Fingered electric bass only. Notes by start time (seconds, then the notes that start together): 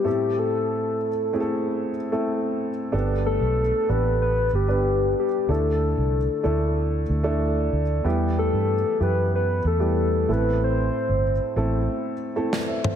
2.93 G1
3.41 B1
3.89 A1
4.53 G1
5.49 D2
5.97 C2
6.45 D2
7.09 D2
7.73 D2
8.05 E2
8.53 G2
9.00 F#2
9.65 E2
10.29 A1
11.09 G1
11.56 A1